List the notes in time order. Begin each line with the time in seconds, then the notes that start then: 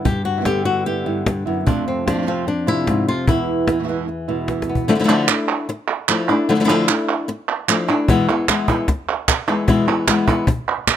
Already playing: D3
0.05 G2 G4, muted nylon-string guitar stroke, cajon bass
0.25 F#4, cajon slap
0.36 G3 B3 E4
0.41 G3 B3 E4
0.45 D3 G3 B3 E4 G4, cajon slap
0.65 F#4
0.85 G3 B3 E4 G4
1.06 G2 B3 E4
1.26 G2, muted nylon-string guitar stroke, cajon slap
1.46 F#2 B3 E4
1.66 F2 C3 F3 A3 C4 D4 F4, cajon bass
1.88 C4
2.06 F3 A3 C4 D4 F4, cajon slap
2.13 C3 F3 A3 C4 F4
2.17 C3 F3 A3 C4 F4
2.22 C3 F3 A3 C4 F4
2.27 F2 C3 F3 A3 C4 F4
2.47 D4, muted nylon-string guitar stroke, cajon slap
2.67 C3 F3 A3 C4 E4 F4
2.87 G#2 F3 A3 C4 F4, cajon slap
3.08 F2 F4
3.27 E2 B2 E3 G#3 B3 E4, cajon bass
3.48 cajon slap
3.68 E3 G#3 B3 E4, cajon slap
3.79 B2 E3 G#3 B3 E4
3.83 B2 E3 G#3 B3 E4
3.88 E2 B2 E3 G#3 B3 E4
4.08 muted nylon-string guitar stroke, cajon slap
4.28 B2 E3 G#3 B3 E4
4.48 E3 G#3 B3 E4, cajon slap
4.62 cajon slap
4.69 B3
4.75 cajon bass
4.88 D3 F3 A3 D4 E4
4.95 F3 A3 D4 E4
5.00 F3 A3 D4 E4
5.04 F3 A3 D4 E4
5.09 D3 F3 A3 D4 E4
5.28 A3 D4 E4, clap
5.69 muted nylon-string guitar stroke
6.08 F3 A3 D4 E4, clap
6.28 A3 D4 E4, clap
6.49 D3 F3 A3 D4 E4
6.55 F3 A3 D4 E4
6.60 F3 A3 D4 E4
6.64 F3 A3 D4 E4
6.69 D3 F3 A3 D4 E4
6.88 A3 D4 E4, clap
7.28 muted nylon-string guitar stroke
7.68 F3 A3 D4 E4, clap
7.88 A3 D4 E4
8.08 E2 B2 E3 G#3 B3 E4, cajon bass
8.29 E3 G#3 B3 E4, cajon slap
8.48 E3 G#3 B3 E4, cajon slap, clap
8.68 E3 G#3 B3 E4, cajon bass, clap
8.88 muted nylon-string guitar stroke, cajon bass, cajon slap
9.28 cajon bass, cajon slap, clap
9.48 E3 G#3 B3 E4
9.68 E2 B2 E3 G#3 B3 E4, cajon bass
9.88 E3 G#3 B3 E4, cajon slap
10.08 E3 G#3 B3 E4, cajon slap, clap
10.28 E3 G#3 B3 E4, cajon bass
10.47 muted nylon-string guitar stroke, cajon bass
10.68 cajon slap
10.87 cajon slap, clap